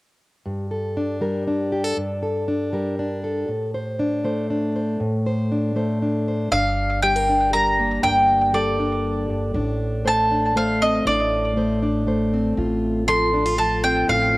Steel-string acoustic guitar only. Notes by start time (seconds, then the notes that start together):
0.46 G2
0.71 A4
0.97 D4
1.21 G3 A#4
1.47 D4
1.72 G4
1.84 A4
1.97 G2
2.23 A4
2.48 D4
2.73 G3 A#4
2.99 D4
3.24 A4
3.48 A2
3.74 C5
3.99 D4
4.24 A3 C5
4.50 D4
4.76 C5
5.00 A2
5.26 C5
5.52 D4
5.76 A3 C5
6.02 D4
6.28 C5
6.52 G2 D4
7.03 G3 G4
7.16 A#4
7.29 D4
7.54 G3 A#4
7.80 A#3
8.03 G2 D4
8.53 G3 A4
8.79 D4
9.30 G2
9.55 A2 D4
10.05 A3 C5
10.31 D4
10.56 A3 C5
10.82 C4
11.06 A2 D4
11.57 A3 C5
11.82 D4
12.07 A3 C5
12.34 C4
12.57 A2 F4
13.08 F3 A4
13.34 D4
13.46 F4
13.58 F3 A4
13.84 C4
14.09 A2 F4